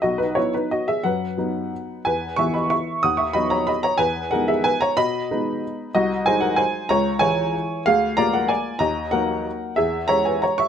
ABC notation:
X:1
M:3/4
L:1/8
Q:1/4=185
K:B
V:1 name="Upright piano"
[Fd] [DB] [Ec] [DB] [Fd] [Ge] | [Bf]6 | [Bg]2 [ec'] [db] [ec']2 | [fd'] [ec'] [db] [ca] [db] [ca] |
[Bg]2 [Af] [Ge] [Bg] [ca] | [db]6 | [Fd]2 [^Bg] [Af] [Bg]2 | [ca]2 [cg]4 |
[G^e]2 [=da] [Af] [dg]2 | [da]2 [Af]4 | [Ge]2 [ca] [Bg] [ca] [ec'] |]
V:2 name="Upright piano" clef=bass
B,,,2 [F,B,D]4 | F,,2 [F,B,D]4 | E,,2 [E,B,E]4 | D,,2 [F,B,D]4 |
E,,2 [G,B,D]4 | B,,2 [G,B,D]4 | ^B,,,2 [F,G,D]4 | C,,2 [E,G,E]4 |
=D,,2 [G,A,^E]4 | D,,2 [F,A,D]4 | E,,2 [G,C]4 |]